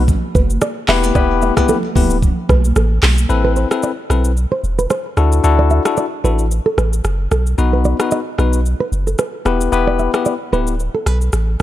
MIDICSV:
0, 0, Header, 1, 5, 480
1, 0, Start_track
1, 0, Key_signature, 1, "minor"
1, 0, Tempo, 535714
1, 1033, Time_signature, 4, 2, 24, 8
1, 10413, End_track
2, 0, Start_track
2, 0, Title_t, "Nylon-string guitar"
2, 0, Program_c, 0, 24
2, 315, Note_on_c, 0, 71, 79
2, 413, Note_off_c, 0, 71, 0
2, 556, Note_on_c, 0, 74, 78
2, 654, Note_off_c, 0, 74, 0
2, 797, Note_on_c, 0, 76, 77
2, 929, Note_off_c, 0, 76, 0
2, 929, Note_on_c, 0, 74, 72
2, 1008, Note_off_c, 0, 74, 0
2, 1037, Note_on_c, 0, 74, 86
2, 1134, Note_off_c, 0, 74, 0
2, 1277, Note_on_c, 0, 76, 79
2, 1408, Note_off_c, 0, 76, 0
2, 1408, Note_on_c, 0, 74, 77
2, 1487, Note_off_c, 0, 74, 0
2, 1516, Note_on_c, 0, 69, 91
2, 1694, Note_off_c, 0, 69, 0
2, 2235, Note_on_c, 0, 71, 77
2, 2333, Note_off_c, 0, 71, 0
2, 2476, Note_on_c, 0, 69, 76
2, 2654, Note_off_c, 0, 69, 0
2, 3088, Note_on_c, 0, 71, 73
2, 3167, Note_off_c, 0, 71, 0
2, 3196, Note_on_c, 0, 72, 73
2, 3294, Note_off_c, 0, 72, 0
2, 3437, Note_on_c, 0, 74, 84
2, 3614, Note_off_c, 0, 74, 0
2, 4048, Note_on_c, 0, 72, 79
2, 4127, Note_off_c, 0, 72, 0
2, 4289, Note_on_c, 0, 71, 75
2, 4368, Note_off_c, 0, 71, 0
2, 4396, Note_on_c, 0, 72, 76
2, 4574, Note_off_c, 0, 72, 0
2, 5009, Note_on_c, 0, 74, 78
2, 5088, Note_off_c, 0, 74, 0
2, 5116, Note_on_c, 0, 76, 70
2, 5213, Note_off_c, 0, 76, 0
2, 5355, Note_on_c, 0, 74, 78
2, 5453, Note_off_c, 0, 74, 0
2, 5596, Note_on_c, 0, 71, 73
2, 5693, Note_off_c, 0, 71, 0
2, 5967, Note_on_c, 0, 69, 83
2, 6047, Note_off_c, 0, 69, 0
2, 6076, Note_on_c, 0, 71, 80
2, 6173, Note_off_c, 0, 71, 0
2, 6557, Note_on_c, 0, 69, 78
2, 6654, Note_off_c, 0, 69, 0
2, 6929, Note_on_c, 0, 71, 70
2, 7008, Note_off_c, 0, 71, 0
2, 7036, Note_on_c, 0, 74, 73
2, 7133, Note_off_c, 0, 74, 0
2, 7277, Note_on_c, 0, 75, 85
2, 7454, Note_off_c, 0, 75, 0
2, 7889, Note_on_c, 0, 71, 82
2, 7968, Note_off_c, 0, 71, 0
2, 8128, Note_on_c, 0, 69, 73
2, 8207, Note_off_c, 0, 69, 0
2, 8236, Note_on_c, 0, 71, 78
2, 8414, Note_off_c, 0, 71, 0
2, 8848, Note_on_c, 0, 74, 80
2, 8927, Note_off_c, 0, 74, 0
2, 8956, Note_on_c, 0, 76, 69
2, 9053, Note_off_c, 0, 76, 0
2, 9195, Note_on_c, 0, 74, 81
2, 9293, Note_off_c, 0, 74, 0
2, 9435, Note_on_c, 0, 71, 73
2, 9533, Note_off_c, 0, 71, 0
2, 9807, Note_on_c, 0, 69, 79
2, 9916, Note_off_c, 0, 69, 0
2, 9916, Note_on_c, 0, 71, 78
2, 10013, Note_off_c, 0, 71, 0
2, 10413, End_track
3, 0, Start_track
3, 0, Title_t, "Tine electric piano"
3, 0, Program_c, 1, 4
3, 791, Note_on_c, 1, 59, 93
3, 793, Note_on_c, 1, 64, 90
3, 793, Note_on_c, 1, 67, 89
3, 795, Note_on_c, 1, 71, 101
3, 1015, Note_off_c, 1, 59, 0
3, 1015, Note_off_c, 1, 64, 0
3, 1016, Note_off_c, 1, 67, 0
3, 1017, Note_off_c, 1, 71, 0
3, 1031, Note_on_c, 1, 59, 95
3, 1032, Note_on_c, 1, 64, 83
3, 1034, Note_on_c, 1, 67, 88
3, 1036, Note_on_c, 1, 71, 104
3, 1372, Note_off_c, 1, 59, 0
3, 1373, Note_off_c, 1, 64, 0
3, 1374, Note_off_c, 1, 67, 0
3, 1375, Note_off_c, 1, 71, 0
3, 1402, Note_on_c, 1, 59, 78
3, 1404, Note_on_c, 1, 64, 69
3, 1406, Note_on_c, 1, 67, 73
3, 1408, Note_on_c, 1, 71, 88
3, 1577, Note_off_c, 1, 59, 0
3, 1578, Note_off_c, 1, 64, 0
3, 1579, Note_off_c, 1, 67, 0
3, 1580, Note_off_c, 1, 71, 0
3, 1750, Note_on_c, 1, 59, 81
3, 1752, Note_on_c, 1, 64, 73
3, 1754, Note_on_c, 1, 67, 70
3, 1756, Note_on_c, 1, 71, 83
3, 1938, Note_off_c, 1, 59, 0
3, 1939, Note_off_c, 1, 64, 0
3, 1940, Note_off_c, 1, 67, 0
3, 1940, Note_off_c, 1, 71, 0
3, 2949, Note_on_c, 1, 60, 93
3, 2950, Note_on_c, 1, 64, 80
3, 2953, Note_on_c, 1, 69, 82
3, 2954, Note_on_c, 1, 71, 101
3, 3291, Note_off_c, 1, 60, 0
3, 3292, Note_off_c, 1, 64, 0
3, 3293, Note_off_c, 1, 69, 0
3, 3294, Note_off_c, 1, 71, 0
3, 3321, Note_on_c, 1, 60, 74
3, 3323, Note_on_c, 1, 64, 69
3, 3325, Note_on_c, 1, 69, 68
3, 3327, Note_on_c, 1, 71, 86
3, 3497, Note_off_c, 1, 60, 0
3, 3498, Note_off_c, 1, 64, 0
3, 3499, Note_off_c, 1, 69, 0
3, 3500, Note_off_c, 1, 71, 0
3, 3670, Note_on_c, 1, 60, 77
3, 3672, Note_on_c, 1, 64, 69
3, 3674, Note_on_c, 1, 69, 68
3, 3676, Note_on_c, 1, 71, 81
3, 3858, Note_off_c, 1, 60, 0
3, 3859, Note_off_c, 1, 64, 0
3, 3860, Note_off_c, 1, 69, 0
3, 3860, Note_off_c, 1, 71, 0
3, 4632, Note_on_c, 1, 62, 96
3, 4634, Note_on_c, 1, 64, 84
3, 4636, Note_on_c, 1, 66, 84
3, 4638, Note_on_c, 1, 69, 104
3, 4855, Note_off_c, 1, 62, 0
3, 4856, Note_off_c, 1, 64, 0
3, 4857, Note_off_c, 1, 66, 0
3, 4858, Note_off_c, 1, 69, 0
3, 4872, Note_on_c, 1, 62, 91
3, 4873, Note_on_c, 1, 64, 87
3, 4875, Note_on_c, 1, 66, 83
3, 4877, Note_on_c, 1, 69, 103
3, 5213, Note_off_c, 1, 62, 0
3, 5213, Note_off_c, 1, 64, 0
3, 5214, Note_off_c, 1, 66, 0
3, 5215, Note_off_c, 1, 69, 0
3, 5243, Note_on_c, 1, 62, 77
3, 5245, Note_on_c, 1, 64, 68
3, 5246, Note_on_c, 1, 66, 68
3, 5249, Note_on_c, 1, 69, 85
3, 5418, Note_off_c, 1, 62, 0
3, 5419, Note_off_c, 1, 64, 0
3, 5419, Note_off_c, 1, 66, 0
3, 5421, Note_off_c, 1, 69, 0
3, 5592, Note_on_c, 1, 62, 75
3, 5593, Note_on_c, 1, 64, 70
3, 5595, Note_on_c, 1, 66, 69
3, 5596, Note_on_c, 1, 69, 81
3, 5778, Note_off_c, 1, 62, 0
3, 5779, Note_off_c, 1, 64, 0
3, 5780, Note_off_c, 1, 66, 0
3, 5781, Note_off_c, 1, 69, 0
3, 6792, Note_on_c, 1, 59, 95
3, 6793, Note_on_c, 1, 63, 83
3, 6795, Note_on_c, 1, 66, 80
3, 6797, Note_on_c, 1, 71, 99
3, 7133, Note_off_c, 1, 59, 0
3, 7133, Note_off_c, 1, 63, 0
3, 7134, Note_off_c, 1, 66, 0
3, 7135, Note_off_c, 1, 71, 0
3, 7162, Note_on_c, 1, 59, 78
3, 7164, Note_on_c, 1, 63, 68
3, 7166, Note_on_c, 1, 66, 70
3, 7168, Note_on_c, 1, 71, 83
3, 7338, Note_off_c, 1, 59, 0
3, 7338, Note_off_c, 1, 63, 0
3, 7339, Note_off_c, 1, 66, 0
3, 7340, Note_off_c, 1, 71, 0
3, 7510, Note_on_c, 1, 59, 74
3, 7511, Note_on_c, 1, 63, 69
3, 7514, Note_on_c, 1, 66, 66
3, 7515, Note_on_c, 1, 71, 85
3, 7697, Note_off_c, 1, 59, 0
3, 7698, Note_off_c, 1, 63, 0
3, 7699, Note_off_c, 1, 66, 0
3, 7700, Note_off_c, 1, 71, 0
3, 8470, Note_on_c, 1, 59, 94
3, 8472, Note_on_c, 1, 64, 84
3, 8474, Note_on_c, 1, 67, 85
3, 8477, Note_on_c, 1, 71, 99
3, 8694, Note_off_c, 1, 59, 0
3, 8695, Note_off_c, 1, 64, 0
3, 8696, Note_off_c, 1, 67, 0
3, 8697, Note_off_c, 1, 71, 0
3, 8711, Note_on_c, 1, 59, 91
3, 8713, Note_on_c, 1, 64, 83
3, 8714, Note_on_c, 1, 67, 82
3, 8716, Note_on_c, 1, 71, 103
3, 9052, Note_off_c, 1, 59, 0
3, 9053, Note_off_c, 1, 64, 0
3, 9054, Note_off_c, 1, 67, 0
3, 9055, Note_off_c, 1, 71, 0
3, 9082, Note_on_c, 1, 59, 77
3, 9084, Note_on_c, 1, 64, 68
3, 9085, Note_on_c, 1, 67, 68
3, 9087, Note_on_c, 1, 71, 79
3, 9257, Note_off_c, 1, 59, 0
3, 9258, Note_off_c, 1, 64, 0
3, 9259, Note_off_c, 1, 67, 0
3, 9260, Note_off_c, 1, 71, 0
3, 9430, Note_on_c, 1, 59, 75
3, 9432, Note_on_c, 1, 64, 70
3, 9434, Note_on_c, 1, 67, 67
3, 9436, Note_on_c, 1, 71, 83
3, 9617, Note_off_c, 1, 59, 0
3, 9618, Note_off_c, 1, 64, 0
3, 9620, Note_off_c, 1, 67, 0
3, 9620, Note_off_c, 1, 71, 0
3, 10413, End_track
4, 0, Start_track
4, 0, Title_t, "Sub bass"
4, 0, Program_c, 2, 38
4, 0, Note_on_c, 2, 35, 94
4, 156, Note_off_c, 2, 35, 0
4, 314, Note_on_c, 2, 30, 94
4, 522, Note_off_c, 2, 30, 0
4, 793, Note_on_c, 2, 28, 108
4, 1001, Note_off_c, 2, 28, 0
4, 1033, Note_on_c, 2, 28, 108
4, 1356, Note_off_c, 2, 28, 0
4, 1753, Note_on_c, 2, 26, 108
4, 2076, Note_off_c, 2, 26, 0
4, 2235, Note_on_c, 2, 35, 95
4, 2442, Note_off_c, 2, 35, 0
4, 2473, Note_on_c, 2, 33, 96
4, 2682, Note_off_c, 2, 33, 0
4, 2712, Note_on_c, 2, 35, 97
4, 2921, Note_off_c, 2, 35, 0
4, 2953, Note_on_c, 2, 33, 102
4, 3276, Note_off_c, 2, 33, 0
4, 3673, Note_on_c, 2, 35, 89
4, 3996, Note_off_c, 2, 35, 0
4, 4153, Note_on_c, 2, 28, 90
4, 4362, Note_off_c, 2, 28, 0
4, 4633, Note_on_c, 2, 38, 102
4, 4841, Note_off_c, 2, 38, 0
4, 4873, Note_on_c, 2, 38, 104
4, 5196, Note_off_c, 2, 38, 0
4, 5592, Note_on_c, 2, 33, 93
4, 5916, Note_off_c, 2, 33, 0
4, 6072, Note_on_c, 2, 33, 88
4, 6281, Note_off_c, 2, 33, 0
4, 6312, Note_on_c, 2, 30, 97
4, 6521, Note_off_c, 2, 30, 0
4, 6552, Note_on_c, 2, 35, 90
4, 6761, Note_off_c, 2, 35, 0
4, 6793, Note_on_c, 2, 35, 111
4, 7116, Note_off_c, 2, 35, 0
4, 7513, Note_on_c, 2, 35, 91
4, 7836, Note_off_c, 2, 35, 0
4, 7993, Note_on_c, 2, 30, 90
4, 8201, Note_off_c, 2, 30, 0
4, 8472, Note_on_c, 2, 28, 102
4, 8681, Note_off_c, 2, 28, 0
4, 8712, Note_on_c, 2, 28, 108
4, 9036, Note_off_c, 2, 28, 0
4, 9432, Note_on_c, 2, 26, 109
4, 9756, Note_off_c, 2, 26, 0
4, 9912, Note_on_c, 2, 35, 96
4, 10121, Note_off_c, 2, 35, 0
4, 10152, Note_on_c, 2, 33, 96
4, 10361, Note_off_c, 2, 33, 0
4, 10413, End_track
5, 0, Start_track
5, 0, Title_t, "Drums"
5, 71, Note_on_c, 9, 64, 74
5, 73, Note_on_c, 9, 36, 100
5, 74, Note_on_c, 9, 82, 73
5, 161, Note_off_c, 9, 64, 0
5, 162, Note_off_c, 9, 36, 0
5, 164, Note_off_c, 9, 82, 0
5, 311, Note_on_c, 9, 63, 77
5, 314, Note_on_c, 9, 36, 97
5, 317, Note_on_c, 9, 82, 47
5, 401, Note_off_c, 9, 63, 0
5, 404, Note_off_c, 9, 36, 0
5, 407, Note_off_c, 9, 82, 0
5, 448, Note_on_c, 9, 82, 74
5, 538, Note_off_c, 9, 82, 0
5, 549, Note_on_c, 9, 82, 73
5, 552, Note_on_c, 9, 37, 97
5, 639, Note_off_c, 9, 82, 0
5, 641, Note_off_c, 9, 37, 0
5, 793, Note_on_c, 9, 37, 95
5, 793, Note_on_c, 9, 39, 95
5, 793, Note_on_c, 9, 46, 71
5, 793, Note_on_c, 9, 82, 51
5, 796, Note_on_c, 9, 63, 67
5, 882, Note_off_c, 9, 46, 0
5, 882, Note_off_c, 9, 82, 0
5, 883, Note_off_c, 9, 37, 0
5, 883, Note_off_c, 9, 39, 0
5, 886, Note_off_c, 9, 63, 0
5, 928, Note_on_c, 9, 82, 76
5, 1018, Note_off_c, 9, 82, 0
5, 1033, Note_on_c, 9, 36, 119
5, 1033, Note_on_c, 9, 82, 69
5, 1123, Note_off_c, 9, 36, 0
5, 1123, Note_off_c, 9, 82, 0
5, 1270, Note_on_c, 9, 82, 54
5, 1279, Note_on_c, 9, 63, 78
5, 1360, Note_off_c, 9, 82, 0
5, 1368, Note_off_c, 9, 63, 0
5, 1403, Note_on_c, 9, 63, 81
5, 1406, Note_on_c, 9, 37, 119
5, 1406, Note_on_c, 9, 82, 70
5, 1407, Note_on_c, 9, 36, 95
5, 1493, Note_off_c, 9, 63, 0
5, 1496, Note_off_c, 9, 36, 0
5, 1496, Note_off_c, 9, 37, 0
5, 1496, Note_off_c, 9, 82, 0
5, 1509, Note_on_c, 9, 64, 82
5, 1509, Note_on_c, 9, 82, 84
5, 1598, Note_off_c, 9, 64, 0
5, 1599, Note_off_c, 9, 82, 0
5, 1640, Note_on_c, 9, 63, 68
5, 1729, Note_off_c, 9, 63, 0
5, 1750, Note_on_c, 9, 64, 78
5, 1754, Note_on_c, 9, 36, 94
5, 1760, Note_on_c, 9, 46, 72
5, 1760, Note_on_c, 9, 82, 55
5, 1839, Note_off_c, 9, 64, 0
5, 1843, Note_off_c, 9, 36, 0
5, 1850, Note_off_c, 9, 46, 0
5, 1850, Note_off_c, 9, 82, 0
5, 1883, Note_on_c, 9, 82, 78
5, 1973, Note_off_c, 9, 82, 0
5, 1992, Note_on_c, 9, 64, 75
5, 1993, Note_on_c, 9, 36, 91
5, 1997, Note_on_c, 9, 82, 72
5, 2082, Note_off_c, 9, 64, 0
5, 2083, Note_off_c, 9, 36, 0
5, 2086, Note_off_c, 9, 82, 0
5, 2231, Note_on_c, 9, 63, 77
5, 2235, Note_on_c, 9, 36, 96
5, 2235, Note_on_c, 9, 37, 98
5, 2238, Note_on_c, 9, 82, 49
5, 2320, Note_off_c, 9, 63, 0
5, 2324, Note_off_c, 9, 36, 0
5, 2324, Note_off_c, 9, 37, 0
5, 2328, Note_off_c, 9, 82, 0
5, 2370, Note_on_c, 9, 82, 73
5, 2459, Note_off_c, 9, 82, 0
5, 2472, Note_on_c, 9, 82, 71
5, 2474, Note_on_c, 9, 37, 93
5, 2561, Note_off_c, 9, 82, 0
5, 2564, Note_off_c, 9, 37, 0
5, 2714, Note_on_c, 9, 46, 70
5, 2714, Note_on_c, 9, 82, 51
5, 2715, Note_on_c, 9, 37, 99
5, 2715, Note_on_c, 9, 39, 98
5, 2715, Note_on_c, 9, 63, 67
5, 2804, Note_off_c, 9, 37, 0
5, 2804, Note_off_c, 9, 39, 0
5, 2804, Note_off_c, 9, 46, 0
5, 2804, Note_off_c, 9, 82, 0
5, 2805, Note_off_c, 9, 63, 0
5, 2850, Note_on_c, 9, 82, 76
5, 2940, Note_off_c, 9, 82, 0
5, 2954, Note_on_c, 9, 82, 67
5, 3044, Note_off_c, 9, 82, 0
5, 3191, Note_on_c, 9, 82, 51
5, 3280, Note_off_c, 9, 82, 0
5, 3326, Note_on_c, 9, 37, 110
5, 3326, Note_on_c, 9, 82, 71
5, 3416, Note_off_c, 9, 37, 0
5, 3416, Note_off_c, 9, 82, 0
5, 3429, Note_on_c, 9, 82, 82
5, 3518, Note_off_c, 9, 82, 0
5, 3674, Note_on_c, 9, 37, 92
5, 3680, Note_on_c, 9, 82, 54
5, 3763, Note_off_c, 9, 37, 0
5, 3769, Note_off_c, 9, 82, 0
5, 3803, Note_on_c, 9, 82, 74
5, 3893, Note_off_c, 9, 82, 0
5, 3916, Note_on_c, 9, 82, 70
5, 4005, Note_off_c, 9, 82, 0
5, 4158, Note_on_c, 9, 82, 47
5, 4247, Note_off_c, 9, 82, 0
5, 4290, Note_on_c, 9, 82, 67
5, 4379, Note_off_c, 9, 82, 0
5, 4391, Note_on_c, 9, 82, 67
5, 4393, Note_on_c, 9, 37, 91
5, 4480, Note_off_c, 9, 82, 0
5, 4483, Note_off_c, 9, 37, 0
5, 4633, Note_on_c, 9, 82, 49
5, 4634, Note_on_c, 9, 37, 95
5, 4723, Note_off_c, 9, 82, 0
5, 4724, Note_off_c, 9, 37, 0
5, 4770, Note_on_c, 9, 82, 69
5, 4859, Note_off_c, 9, 82, 0
5, 4873, Note_on_c, 9, 82, 69
5, 4963, Note_off_c, 9, 82, 0
5, 5109, Note_on_c, 9, 82, 50
5, 5199, Note_off_c, 9, 82, 0
5, 5245, Note_on_c, 9, 37, 111
5, 5246, Note_on_c, 9, 82, 69
5, 5335, Note_off_c, 9, 37, 0
5, 5335, Note_off_c, 9, 82, 0
5, 5348, Note_on_c, 9, 82, 81
5, 5438, Note_off_c, 9, 82, 0
5, 5599, Note_on_c, 9, 82, 53
5, 5689, Note_off_c, 9, 82, 0
5, 5722, Note_on_c, 9, 82, 74
5, 5812, Note_off_c, 9, 82, 0
5, 5834, Note_on_c, 9, 82, 70
5, 5924, Note_off_c, 9, 82, 0
5, 6074, Note_on_c, 9, 37, 92
5, 6077, Note_on_c, 9, 82, 47
5, 6163, Note_off_c, 9, 37, 0
5, 6167, Note_off_c, 9, 82, 0
5, 6209, Note_on_c, 9, 82, 69
5, 6299, Note_off_c, 9, 82, 0
5, 6311, Note_on_c, 9, 82, 64
5, 6313, Note_on_c, 9, 37, 91
5, 6400, Note_off_c, 9, 82, 0
5, 6403, Note_off_c, 9, 37, 0
5, 6554, Note_on_c, 9, 37, 89
5, 6554, Note_on_c, 9, 82, 48
5, 6643, Note_off_c, 9, 82, 0
5, 6644, Note_off_c, 9, 37, 0
5, 6689, Note_on_c, 9, 82, 76
5, 6779, Note_off_c, 9, 82, 0
5, 6793, Note_on_c, 9, 82, 67
5, 6883, Note_off_c, 9, 82, 0
5, 7030, Note_on_c, 9, 82, 52
5, 7119, Note_off_c, 9, 82, 0
5, 7165, Note_on_c, 9, 37, 113
5, 7165, Note_on_c, 9, 82, 68
5, 7254, Note_off_c, 9, 37, 0
5, 7255, Note_off_c, 9, 82, 0
5, 7268, Note_on_c, 9, 82, 82
5, 7358, Note_off_c, 9, 82, 0
5, 7513, Note_on_c, 9, 37, 95
5, 7519, Note_on_c, 9, 82, 53
5, 7603, Note_off_c, 9, 37, 0
5, 7608, Note_off_c, 9, 82, 0
5, 7643, Note_on_c, 9, 82, 75
5, 7732, Note_off_c, 9, 82, 0
5, 7756, Note_on_c, 9, 82, 69
5, 7846, Note_off_c, 9, 82, 0
5, 7998, Note_on_c, 9, 82, 48
5, 8088, Note_off_c, 9, 82, 0
5, 8129, Note_on_c, 9, 82, 72
5, 8218, Note_off_c, 9, 82, 0
5, 8229, Note_on_c, 9, 82, 67
5, 8232, Note_on_c, 9, 37, 88
5, 8319, Note_off_c, 9, 82, 0
5, 8321, Note_off_c, 9, 37, 0
5, 8473, Note_on_c, 9, 82, 49
5, 8474, Note_on_c, 9, 37, 96
5, 8563, Note_off_c, 9, 82, 0
5, 8564, Note_off_c, 9, 37, 0
5, 8609, Note_on_c, 9, 82, 72
5, 8699, Note_off_c, 9, 82, 0
5, 8713, Note_on_c, 9, 82, 66
5, 8803, Note_off_c, 9, 82, 0
5, 8950, Note_on_c, 9, 82, 49
5, 9040, Note_off_c, 9, 82, 0
5, 9085, Note_on_c, 9, 37, 112
5, 9085, Note_on_c, 9, 82, 70
5, 9174, Note_off_c, 9, 37, 0
5, 9174, Note_off_c, 9, 82, 0
5, 9187, Note_on_c, 9, 82, 83
5, 9277, Note_off_c, 9, 82, 0
5, 9438, Note_on_c, 9, 82, 51
5, 9528, Note_off_c, 9, 82, 0
5, 9561, Note_on_c, 9, 82, 74
5, 9650, Note_off_c, 9, 82, 0
5, 9674, Note_on_c, 9, 82, 68
5, 9764, Note_off_c, 9, 82, 0
5, 9913, Note_on_c, 9, 37, 93
5, 9916, Note_on_c, 9, 82, 49
5, 10002, Note_off_c, 9, 37, 0
5, 10006, Note_off_c, 9, 82, 0
5, 10048, Note_on_c, 9, 82, 68
5, 10137, Note_off_c, 9, 82, 0
5, 10149, Note_on_c, 9, 82, 71
5, 10152, Note_on_c, 9, 37, 92
5, 10239, Note_off_c, 9, 82, 0
5, 10241, Note_off_c, 9, 37, 0
5, 10413, End_track
0, 0, End_of_file